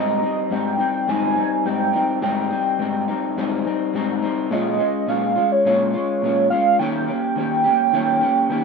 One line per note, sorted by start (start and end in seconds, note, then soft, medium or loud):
0.00 0.22 G#2 medium
0.00 0.23 G3 medium
0.00 0.22 C4 medium
0.00 0.20 D#4 medium
0.00 0.54 D#5 medium
0.22 0.50 G3 soft
0.22 0.51 C4 soft
0.22 0.51 D#4 medium
0.50 0.79 G#2 medium
0.50 0.80 G3 medium
0.50 0.79 C4 medium
0.50 0.77 D#4 medium
0.50 1.11 G5 loud
0.78 1.08 G3 soft
0.78 1.08 C4 medium
0.78 1.07 D#4 soft
1.08 1.37 G#2 medium
1.08 1.37 G3 medium
1.08 1.37 C4 medium
1.08 1.35 D#4 medium
1.08 1.66 G#5 loud
1.36 1.65 G3 soft
1.36 1.66 C4 soft
1.36 1.65 D#4 medium
1.64 1.94 G#2 medium
1.64 1.94 G3 medium
1.64 1.94 C4 soft
1.64 1.92 D#4 medium
1.64 2.19 G5 loud
1.93 2.21 G3 soft
1.93 2.22 C4 medium
1.93 2.22 D#4 medium
2.22 2.51 G#2 medium
2.22 2.51 G3 medium
2.22 2.51 C4 medium
2.22 2.49 D#4 medium
2.22 3.90 G5 medium
2.51 2.79 G3 soft
2.51 2.80 C4 medium
2.51 2.79 D#4 soft
2.79 3.08 G#2 medium
2.79 3.08 G3 medium
2.79 3.08 C4 medium
2.79 3.07 D#4 medium
3.08 3.37 G3 medium
3.08 3.37 C4 soft
3.08 3.37 D#4 medium
3.37 3.65 G#2 medium
3.37 3.66 G3 medium
3.37 3.65 C4 medium
3.37 3.63 D#4 medium
3.64 3.94 G3 soft
3.64 3.94 C4 soft
3.64 3.94 D#4 medium
3.94 4.22 G#2 medium
3.94 4.23 G3 medium
3.94 4.23 C4 medium
3.94 4.21 D#4 medium
4.22 4.51 G3 medium
4.22 4.52 C4 medium
4.22 4.51 D#4 medium
4.50 4.79 A#2 medium
4.50 4.80 G#3 medium
4.50 4.79 C#4 medium
4.50 4.78 F4 medium
4.50 5.10 D#5 medium
4.79 5.07 G#3 soft
4.79 5.08 C#4 soft
4.79 5.08 F4 medium
5.07 5.36 A#2 medium
5.07 5.37 G#3 medium
5.07 5.36 C#4 medium
5.07 5.34 F4 medium
5.07 5.53 F5 medium
5.36 5.65 G#3 soft
5.36 5.66 C#4 soft
5.36 5.65 F4 medium
5.52 5.65 C#5 medium
5.65 5.94 A#2 medium
5.65 5.94 G#3 medium
5.65 5.94 C#4 medium
5.65 5.93 F4 medium
5.65 6.47 C#5 medium
5.94 6.22 G#3 soft
5.94 6.23 C#4 soft
5.94 6.22 F4 medium
6.22 6.51 A#2 medium
6.22 6.52 G#3 medium
6.22 6.51 C#4 medium
6.22 6.50 F4 medium
6.50 6.80 G#3 soft
6.50 6.80 C#4 medium
6.50 6.80 F4 medium
6.50 6.77 F5 loud
6.79 7.08 D#3 medium
6.79 7.08 A#3 medium
6.79 7.08 C#4 medium
6.79 7.07 G4 medium
6.79 8.64 G5 loud
7.08 7.36 A#3 soft
7.08 7.37 C#4 soft
7.08 7.37 G4 medium
7.36 7.65 D#3 medium
7.36 7.65 A#3 medium
7.36 7.64 C#4 medium
7.36 7.63 G4 medium
7.64 7.92 A#3 soft
7.64 7.93 C#4 medium
7.64 7.93 G4 medium
7.93 8.22 D#3 medium
7.93 8.22 A#3 medium
7.93 8.21 C#4 medium
7.93 8.20 G4 medium
8.21 8.49 A#3 soft
8.21 8.51 C#4 medium
8.21 8.50 G4 medium
8.49 8.64 D#3 medium
8.49 8.64 A#3 medium
8.49 8.64 C#4 medium
8.49 8.64 G4 medium